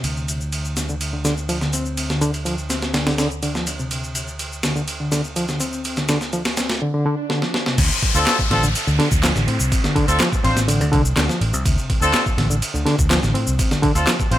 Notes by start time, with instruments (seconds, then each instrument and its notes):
Already playing: reed electric piano C3
0.04 picked electric bass D2, ride, shaker
0.17 shaker
0.28 ride, shaker
0.41 shaker
0.52 ride, shaker
0.65 shaker
0.77 reed electric piano D3, snare, ride, shaker
0.89 reed electric piano D3, shaker
1.01 ride, shaker
1.13 reed electric piano D3
1.25 reed electric piano D3, snare, ride, shaker
1.37 shaker
1.49 reed electric piano F3, ride, shaker
1.61 reed electric piano D3, snare, shaker
1.73 reed electric piano C4, ride, shaker
1.86 shaker
1.97 ride, shaker
2.10 reed electric piano D3, snare, shaker
2.21 reed electric piano D3, ride, shaker
2.34 ride, shaker
2.45 reed electric piano F3, ride, shaker
2.58 shaker
2.70 reed electric piano C4, snare, ride, shaker
2.82 snare, shaker
2.94 reed electric piano D3, snare, ride, shaker
3.07 reed electric piano D3, snare, ride
3.18 reed electric piano D3, snare, ride, shaker
3.31 shaker
3.43 reed electric piano D3, ride, shaker
3.55 reed electric piano F3, snare, shaker
3.67 ride, shaker
3.79 reed electric piano C3, shaker
3.91 ride, shaker
4.04 shaker
4.15 ride, shaker
4.28 shaker
4.39 ride, shaker
4.52 shaker
4.63 reed electric piano D3, snare, ride, shaker
4.76 reed electric piano D3, shaker
4.88 ride, shaker
5.00 reed electric piano D3
5.12 reed electric piano D3, snare, ride, shaker
5.24 shaker
5.36 reed electric piano F3, ride, shaker
5.48 reed electric piano D3, snare, shaker
5.60 reed electric piano C4, ride, shaker
5.73 shaker
5.84 ride, shaker
5.97 reed electric piano D3, snare, shaker
6.09 reed electric piano D3, snare, ride, shaker
6.21 snare, shaker
6.33 reed electric piano F3, ride, shaker
6.45 snare, ride, shaker
6.57 reed electric piano C4, snare, ride, shaker
6.69 snare, ride, shaker
6.81 reed electric piano D3, swell
6.94 reed electric piano D3
7.06 reed electric piano D3
7.30 reed electric piano D3, snare
7.42 reed electric piano F3, snare
7.54 snare
7.66 reed electric piano C3, snare
7.78 picked electric bass D2, kick, crash, ride, downlifter, shaker
7.91 shaker
8.02 kick, ride
8.15 picked electric bass D2, horn section C4 D4 F4 A4, shaker
8.27 snare, clap, ride, shaker
8.39 kick, shaker
8.50 picked electric bass A1, reed electric piano D3, horn section C4 D4 F4 A4, snare, ride
8.63 picked electric bass A1, reed electric piano D3, shaker
8.75 muted picked electric bass stroke, ride, shaker
8.87 picked electric bass D2, reed electric piano D3, shaker
8.99 reed electric piano D3, snare, ride
9.12 picked electric bass D2, kick, shaker
9.23 reed electric piano F3, snare, clap, ride, shaker
9.36 picked electric bass A1, reed electric piano D3, snare, shaker
9.47 picked electric bass A2, reed electric piano C4, ride
9.60 picked electric bass C2, shaker
9.72 kick, ride, shaker
9.84 reed electric piano D3, snare, shaker
9.96 reed electric piano D3, kick, ride
10.08 picked electric bass D2, horn section C4 D4 F4 A4, ride, shaker
10.20 reed electric piano F3, snare, clap, ride, shaker
10.33 kick, shaker
10.44 picked electric bass A1, reed electric piano C4, horn section C4 D4 F4 C5, ride
10.56 picked electric bass A1, snare, shaker
10.68 reed electric piano D3, ride, shaker
10.81 picked electric bass D2, reed electric piano D3, ride, shaker
10.92 picked electric bass C2, reed electric piano D3, kick, ride
11.06 shaker
11.16 picked electric bass D2, reed electric piano D3, snare, clap, ride, shaker
11.29 reed electric piano F3, snare, shaker
11.41 picked electric bass A1, ride
11.53 picked electric bass C2, reed electric piano C3, shaker
11.66 picked electric bass D2, kick, ride, shaker
11.78 shaker
11.90 kick, ride
12.01 picked electric bass D2, horn section C4 D4 F4 A4, shaker
12.14 snare, clap, ride, shaker
12.26 kick, shaker
12.37 picked electric bass A1, reed electric piano D3, snare, ride
12.50 picked electric bass A1, reed electric piano D3, shaker
12.62 muted picked electric bass stroke, ride, shaker
12.74 picked electric bass D2, reed electric piano D3, shaker
12.86 reed electric piano D3, snare, ride
12.99 picked electric bass D2, kick, shaker
13.10 reed electric piano F3, snare, clap, ride, shaker
13.23 picked electric bass A1, reed electric piano D3, snare, shaker
13.34 picked electric bass A2, reed electric piano C4, ride
13.47 picked electric bass C2, shaker
13.59 kick, ride, shaker
13.71 reed electric piano D3, snare, shaker
13.83 reed electric piano D3, kick, ride
13.95 picked electric bass D2, horn section C4 D4 F4 A4, ride, shaker
14.07 reed electric piano F3, snare, clap, ride, shaker
14.20 kick, shaker
14.31 picked electric bass A1, horn section C4 D4 F4 C5, reed electric piano C4, ride